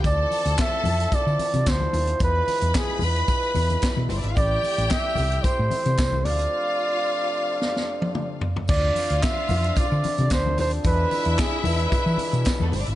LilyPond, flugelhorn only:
\new Staff \with { instrumentName = "Flugelhorn" } { \time 4/4 \key d \dorian \tempo 4 = 111 d''4 e''4 d''4 c''4 | b'4 gis'8 b'2 r8 | d''4 e''4 c''4. d''8~ | d''2.~ d''8 r8 |
d''4 e''4 d''4 c''8 c''8 | b'4 gis'8 b'2 r8 | }